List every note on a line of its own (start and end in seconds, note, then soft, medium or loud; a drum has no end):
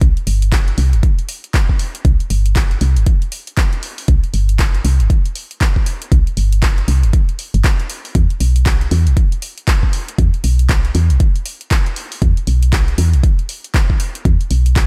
0.01 0.13 C2 loud
0.01 kick loud
0.01 closed hi-hat medium
0.17 closed hi-hat soft
0.27 0.74 G1 medium
0.27 open hi-hat loud
0.42 closed hi-hat soft
0.52 kick loud
0.52 clap loud
0.52 closed hi-hat medium
0.68 closed hi-hat soft
0.78 0.95 C2 loud
0.78 open hi-hat loud
0.93 1.01 G1 loud
0.93 closed hi-hat soft
1.03 kick loud
1.03 closed hi-hat medium
1.19 closed hi-hat soft
1.29 open hi-hat loud
1.44 closed hi-hat soft
1.54 kick loud
1.54 clap loud
1.54 closed hi-hat medium
1.69 kick medium
1.79 open hi-hat loud
1.95 closed hi-hat soft
2.05 2.17 C2 loud
2.05 kick loud
2.05 closed hi-hat medium
2.20 closed hi-hat soft
2.30 2.77 G1 medium
2.30 open hi-hat loud
2.46 closed hi-hat soft
2.56 kick loud
2.56 clap loud
2.56 closed hi-hat medium
2.71 closed hi-hat soft
2.81 2.98 C2 loud
2.81 open hi-hat loud
2.96 3.04 G1 loud
2.96 closed hi-hat soft
3.06 kick loud
3.06 closed hi-hat medium
3.22 closed hi-hat soft
3.32 open hi-hat loud
3.47 closed hi-hat soft
3.57 kick loud
3.57 clap loud
3.57 closed hi-hat medium
3.73 closed hi-hat soft
3.83 open hi-hat loud
3.98 open hi-hat medium
4.08 4.20 C2 loud
4.08 kick loud
4.08 closed hi-hat medium
4.24 closed hi-hat soft
4.34 4.81 G1 medium
4.34 open hi-hat loud
4.49 closed hi-hat medium
4.59 kick loud
4.59 clap loud
4.59 closed hi-hat medium
4.75 closed hi-hat soft
4.85 5.01 C2 medium
4.85 open hi-hat loud
5.00 5.08 G1 loud
5.00 closed hi-hat soft
5.10 kick loud
5.10 closed hi-hat medium
5.25 closed hi-hat soft
5.35 open hi-hat loud
5.51 closed hi-hat soft
5.61 kick loud
5.61 clap loud
5.61 closed hi-hat medium
5.76 kick medium
5.86 open hi-hat medium
6.02 closed hi-hat medium
6.12 6.23 C2 loud
6.12 kick loud
6.12 closed hi-hat medium
6.27 closed hi-hat soft
6.37 6.84 G1 medium
6.37 open hi-hat loud
6.53 closed hi-hat medium
6.63 kick loud
6.63 clap loud
6.63 closed hi-hat medium
6.78 closed hi-hat soft
6.88 7.05 C2 loud
6.88 open hi-hat loud
7.03 7.11 G1 loud
7.03 closed hi-hat soft
7.13 kick loud
7.13 closed hi-hat medium
7.29 closed hi-hat soft
7.39 open hi-hat medium
7.54 7.62 G1 medium
7.54 closed hi-hat soft
7.64 kick loud
7.64 clap loud
7.64 closed hi-hat medium
7.80 closed hi-hat soft
7.90 open hi-hat loud
8.05 open hi-hat medium
8.15 8.27 E2 loud
8.15 kick loud
8.15 closed hi-hat medium
8.30 closed hi-hat soft
8.40 8.87 B1 medium
8.40 open hi-hat loud
8.56 closed hi-hat medium
8.66 kick loud
8.66 clap loud
8.66 closed hi-hat medium
8.81 closed hi-hat soft
8.91 9.08 E2 loud
8.91 open hi-hat loud
9.07 9.14 B1 loud
9.07 closed hi-hat soft
9.17 kick loud
9.17 closed hi-hat medium
9.32 closed hi-hat soft
9.42 open hi-hat loud
9.58 closed hi-hat soft
9.68 kick loud
9.68 clap loud
9.68 closed hi-hat medium
9.83 kick medium
9.93 open hi-hat loud
10.09 closed hi-hat medium
10.18 10.30 E2 loud
10.18 kick loud
10.18 closed hi-hat medium
10.34 closed hi-hat soft
10.44 10.91 B1 medium
10.44 open hi-hat loud
10.59 closed hi-hat soft
10.69 kick loud
10.69 clap loud
10.69 closed hi-hat medium
10.85 closed hi-hat soft
10.95 11.12 E2 loud
10.95 open hi-hat loud
11.10 11.18 B1 loud
11.10 closed hi-hat soft
11.20 kick loud
11.20 closed hi-hat medium
11.36 closed hi-hat soft
11.46 open hi-hat loud
11.61 closed hi-hat soft
11.71 kick loud
11.71 clap loud
11.71 closed hi-hat medium
11.86 closed hi-hat soft
11.96 open hi-hat loud
12.12 open hi-hat medium
12.22 12.34 E2 loud
12.22 kick loud
12.22 closed hi-hat medium
12.37 closed hi-hat soft
12.47 12.94 B1 medium
12.47 open hi-hat loud
12.63 closed hi-hat medium
12.73 kick loud
12.73 clap loud
12.73 closed hi-hat medium
12.88 closed hi-hat soft
12.98 13.15 E2 loud
12.98 open hi-hat loud
13.13 13.21 B1 loud
13.13 closed hi-hat soft
13.23 kick loud
13.23 closed hi-hat medium
13.39 closed hi-hat soft
13.49 open hi-hat loud
13.64 closed hi-hat soft
13.74 kick loud
13.74 clap loud
13.74 closed hi-hat medium
13.90 kick medium
14.00 open hi-hat loud
14.15 closed hi-hat medium
14.25 14.37 E2 loud
14.25 kick loud
14.25 closed hi-hat medium
14.41 closed hi-hat soft
14.51 14.87 B1 medium
14.51 open hi-hat loud
14.66 closed hi-hat soft
14.76 kick loud
14.76 clap loud
14.76 closed hi-hat medium